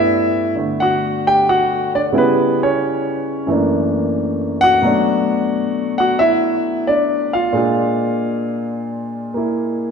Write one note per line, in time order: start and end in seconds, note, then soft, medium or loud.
0.00 2.12 G2 soft
0.00 2.12 G3 soft
0.00 0.57 A3 soft
0.00 2.12 B3 medium
0.00 0.54 E4 medium
0.00 0.53 E5 medium
0.56 2.13 D3 soft
0.56 2.15 A3 soft
0.80 1.24 F#4 medium
0.80 1.27 F#5 medium
1.27 1.46 G4 medium
1.27 1.49 G5 medium
1.49 1.91 F#4 medium
1.49 1.91 F#5 medium
1.95 2.00 D4 medium
1.95 2.00 D5 medium
2.12 3.48 C#3 medium
2.12 3.49 G3 soft
2.12 2.16 B3 soft
2.12 3.49 E4 medium
2.17 2.59 B3 medium
2.17 2.59 B4 medium
2.63 3.47 C#4 soft
2.63 3.47 C#5 medium
3.47 4.83 F#2 soft
3.47 4.84 E3 soft
3.47 4.83 A3 soft
3.51 4.85 A#3 soft
3.51 4.85 D4 soft
4.61 5.94 F#4 medium
4.61 5.93 F#5 loud
4.82 7.53 B2 soft
4.82 7.54 F#3 soft
4.82 7.54 A3 soft
4.86 6.87 D4 medium
5.98 6.19 F#4 medium
5.98 6.20 F#5 medium
6.19 6.83 E4 medium
6.19 6.89 E5 medium
6.87 7.30 D4 medium
6.87 7.34 D5 medium
7.33 7.56 F4 medium
7.33 8.64 F5 medium
7.53 9.91 A#2 medium
7.53 9.91 G#3 soft
7.53 9.91 D4 soft
7.57 9.91 F4 medium
9.34 9.91 A#3 soft
9.34 9.91 E4 soft